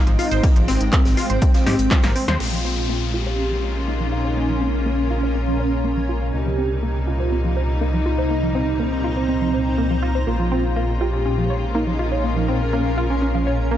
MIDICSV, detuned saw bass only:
0, 0, Header, 1, 2, 480
1, 0, Start_track
1, 0, Tempo, 491803
1, 425, Time_signature, 4, 2, 24, 8
1, 13444, End_track
2, 0, Start_track
2, 0, Title_t, "Detuned saw bass"
2, 0, Program_c, 0, 39
2, 67, Note_on_c, 0, 32, 81
2, 155, Note_off_c, 0, 32, 0
2, 308, Note_on_c, 0, 32, 80
2, 395, Note_off_c, 0, 32, 0
2, 548, Note_on_c, 0, 32, 76
2, 635, Note_off_c, 0, 32, 0
2, 666, Note_on_c, 0, 32, 93
2, 756, Note_off_c, 0, 32, 0
2, 788, Note_on_c, 0, 32, 79
2, 875, Note_off_c, 0, 32, 0
2, 1028, Note_on_c, 0, 32, 77
2, 1115, Note_off_c, 0, 32, 0
2, 1267, Note_on_c, 0, 32, 81
2, 1355, Note_off_c, 0, 32, 0
2, 1625, Note_on_c, 0, 44, 98
2, 1716, Note_off_c, 0, 44, 0
2, 1747, Note_on_c, 0, 32, 84
2, 1835, Note_off_c, 0, 32, 0
2, 1987, Note_on_c, 0, 32, 80
2, 2075, Note_off_c, 0, 32, 0
2, 2227, Note_on_c, 0, 39, 79
2, 2315, Note_off_c, 0, 39, 0
2, 2345, Note_on_c, 0, 34, 88
2, 6161, Note_off_c, 0, 34, 0
2, 6185, Note_on_c, 0, 36, 90
2, 10001, Note_off_c, 0, 36, 0
2, 10025, Note_on_c, 0, 34, 84
2, 13444, Note_off_c, 0, 34, 0
2, 13444, End_track
0, 0, End_of_file